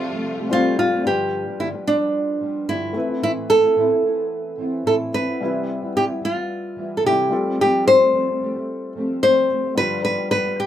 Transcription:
Already playing: C3 F3 G3 A3 C4 F4 A4 C5
0.10 A3 C4 G4
0.37 A3 C4 G4
0.49 F3 G3 A3 C4 F4 C5
0.53 G4
0.77 F3 A3 C4 F4 G4
0.91 A3 C4 G4
1.02 G2 D3 F3 G3 D4 F4
1.06 G3 B3 G4 B4
1.46 F3 G3 B3 G4
1.58 G2 D3 F3 G3 B3 E4 G4
1.73 F3 G3 B3 G4
1.86 F3 G3 B3 D4 G4
2.40 F3 G3 B3 G4
2.68 G2 D3 F3 G3 B3 E4 G4
2.93 E3 A3 B3 C4 E4
2.97 B4
3.08 B3 C4 E4
3.22 A2 E3 B3 C4 E4
3.50 A4
3.61 B3 C4 E4
3.76 A2 E3 B3 C4 E4
3.89 B3 C4 E4
4.02 E3 B3 C4 E4
4.57 E3 B3 C4 E4
4.84 A2 E3 B3 C4 E4 A4
5.12 E3 B3 C4 E4 B4
5.26 B3 C4 E4
5.40 C3 E3 G3 B3 C4 E4 B4 E5
5.81 G3 B3 E4
5.95 C3 E3 G3 B3 E4 G4
6.08 G3 B3 E4
6.21 E3 G3 B3 E4 F4
6.37 G3 B3
6.76 E3 G3 B3 E4
6.97 A4
7.04 C3 E3 G3 B3 E4 G4
7.30 F3 G3 A3 C4 F4 A4
7.34 C4 G4
7.45 A3 C4 G4
7.59 F3 A3 C4 G4
7.88 C5
7.99 A3 C4 G4
8.13 F3 A3 C4 G4
8.27 A3 C4 G4
8.40 F3 A3 C4 G4
8.54 A3 C4 G4
8.95 F3 A3 C4 G4
9.22 F3 A3 C4 G4 C5
9.49 F3 A3 C4 G4
9.64 A3 C4 G4
9.75 G2 D3 F3 G3 D4 F4 B4
9.79 B3 G4 B4
10.05 B4
10.18 F3 G3 B3 G4
10.31 G2 D3 F3 G3 B3 G4 B4
10.45 F3 G3 B3 G4
10.58 F3 G3 B3 G4

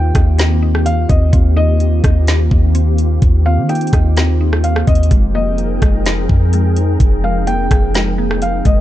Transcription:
Already playing: D#2 D#3 A#3 C4 D#4 F4 G4 G5
0.15 D#2 D#5, kick, cross-stick, closed hi-hat
0.38 C4, snare, closed hi-hat
0.62 D#4
0.75 cross-stick
0.86 F5, closed hi-hat
1.09 D#2 C4 D#5, kick, closed hi-hat
1.33 D#2 C4, kick, closed hi-hat
1.56 D#4 D#5
1.80 closed hi-hat
2.04 D#2 C4, kick, cross-stick, closed hi-hat
2.27 snare, closed hi-hat
2.51 D#2, kick
2.75 C4, closed hi-hat
2.98 closed hi-hat
3.22 D#2, kick, closed hi-hat
3.46 C4 F5
3.57 D#3
3.69 D#4 G5, closed hi-hat
3.75 closed hi-hat
3.81 closed hi-hat
3.87 closed hi-hat
3.93 D#2 D#5, kick, cross-stick, closed hi-hat
4.17 C4, snare, closed hi-hat
4.41 D#4
4.53 cross-stick
4.64 F5, closed hi-hat
4.76 cross-stick
4.87 D#2 C4 D#5, kick, closed hi-hat
4.95 closed hi-hat
5.03 closed hi-hat
5.11 F1 F3 G#3 D#4 G#4 A#4 G5, kick, closed hi-hat
5.35 A#3 D#5
5.58 closed hi-hat
5.82 F1 G#3, kick, cross-stick, closed hi-hat
6.06 snare, closed hi-hat
6.29 F2, kick
6.53 G#3, closed hi-hat
6.76 closed hi-hat
7.00 F1, kick, closed hi-hat
7.24 G#3 F5
7.47 A#3 G5, closed hi-hat
7.71 F1 G#4, kick, cross-stick, closed hi-hat
7.94 G#3, snare, closed hi-hat
8.18 A#3
8.31 cross-stick
8.42 F5, closed hi-hat
8.65 F1 G#3 D#5, kick, closed hi-hat

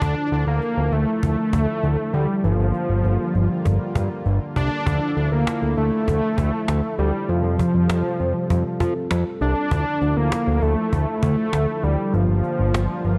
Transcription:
Already playing: D4
0.02 D2 D3 F3 E4 A4, cajon bass
0.32 D2, cajon slap
0.47 D2 A#3
0.62 cajon slap
0.77 D2
0.93 D2 A3, cajon slap
1.23 D2, cajon bass
1.53 D2, cajon bass
1.83 D2, cajon slap
2.14 D2 G3, cajon slap
2.44 G1 F3 G3 A#3 F4, cajon slap
2.59 G1
2.74 cajon slap
2.89 G1
3.05 G1, cajon slap
3.35 G1, cajon slap
3.65 G1, cajon bass
3.95 G2, cajon bass
4.26 G1, cajon slap
4.56 C2 D4, cajon bass
4.87 D2 F3 E4 A4, cajon bass
5.17 D2, cajon slap
5.32 D2 A#3
5.47 cajon slap
5.62 D2
5.77 D2 A3, cajon slap
6.08 D2, cajon bass
6.38 D2, cajon bass
6.68 D2, cajon slap
6.99 D2 G3, cajon slap
7.29 F2 C3 F3 G3 F4 A4, cajon slap
7.44 F2
7.59 cajon bass
7.74 F2
7.90 F2, cajon slap
8.20 F2, cajon slap
8.50 F2, cajon bass
8.80 F3, cajon bass
9.11 F2, cajon slap
9.41 C2 D4, cajon slap
9.71 D2 D3 F3 E4, cajon bass
10.01 D2, cajon slap
10.17 D2 A#3
10.32 cajon slap
10.47 D2
10.62 D2 A3, cajon slap
10.93 D2, cajon bass
11.23 D2 A3, cajon bass
11.53 D2, cajon slap
11.83 D2 G3, cajon slap
12.14 G1 F3 G3 A#3 F4, cajon slap
12.29 G1
12.44 cajon slap
12.59 G1
12.74 G1, cajon slap
13.05 G1, cajon slap

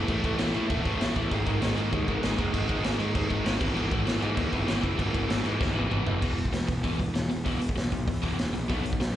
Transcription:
0.08 A1 A2 E3 A3, kick, crash
0.24 A1 A2 E3 A3, kick, crash
0.39 A1 A2 E3 A3, snare, crash
0.54 A2 E3 A3, crash
0.70 E1 A2 E3 A3, kick, crash
0.85 A1 A2 E3 A3, kick, crash
1.00 A1 A2 E3 A3, snare, crash
1.15 A1 A2 E3 A3, kick, crash
1.31 G#1 G#2 D#3 G#3, kick, crash
1.46 G#1 G#2 D#3 G#3, kick, crash
1.61 G#1 G#2 D#3 G#3, snare, crash
1.76 G#2 D#3 G#3, crash
1.92 D#2 G#2 D#3 G#3, kick, crash
2.07 G#1 G#2 D#3 G#3, kick, crash
2.23 G#1 G#2 D#3 G#3, snare, crash
2.38 F#1 G#2 D#3 G#3, kick, crash
2.53 G#1 G#2 D#3 G#3, kick, crash
2.68 G#1 G#2 D#3 G#3, kick, crash
2.83 G#1 G#2 D#3 G#3, snare, crash
2.98 G#2 D#3 G#3, crash
3.14 D#2 G#2 D#3 G#3, kick, crash
3.29 G#1 G#2 D#3 G#3, kick, crash
3.45 G#1 G#2 D#3 G#3, snare, crash
3.60 G#1 E2 B2 E3, kick, crash
3.74 G#1 E2 B2 E3, crash
3.90 G#1 E2 B2 E3, kick, crash
4.05 G#1 E2 B2 E3, snare, crash
4.20 E2 G#2 B2 E3, crash
4.36 D#2 E2 B2 E3, kick, crash
4.52 G#1 E2 B2 E3, kick, crash
4.67 G#1 E2 B2 E3, snare, crash
4.82 F#1 E2 B2 E3, kick, crash
4.97 G#1 E2 B2 E3, kick, crash
5.13 G#1 E2 B2 E3, kick, crash
5.28 G#1 E2 B2 E3, snare, crash
5.44 E2 G#2 B2 E3, crash
5.60 D#2 E2 B2 E3, kick, snare
5.74 G#1 E2 B2 E3, high tom
5.90 G#1 E2 B2 E3, mid tom
6.05 F#1 E2 B2 E3, floor tom
6.21 E1 E2 B2 E3, kick, crash
6.37 E1 E2 B2, open hi-hat
6.45 kick
6.52 E1 E2 B2, snare, open hi-hat
6.67 E1 E2 B2, kick, open hi-hat
6.84 E1 E2 B2 E3, kick, open hi-hat
6.98 E1 E2 B2, kick, open hi-hat
7.14 E1 E2 B2, snare, open hi-hat
7.30 E1 E2 B2, open hi-hat
7.45 E1 E2 B2 E3, kick, open hi-hat
7.60 E1 E2 B2, open hi-hat
7.69 kick
7.76 B1 E2 B2, snare, open hi-hat
7.92 B1 E2 B2, kick, open hi-hat
8.07 E2 B2, kick, open hi-hat
8.22 E1 E2 B2 E3, kick, open hi-hat
8.38 E1 E2 B2, snare, open hi-hat
8.53 A#1 E2 B2, open hi-hat
8.69 B1 B2 F#3 B3, kick, open hi-hat
8.84 B1 B2 F#3, open hi-hat
8.93 kick
9.00 B1 B2 F#3, snare, open hi-hat

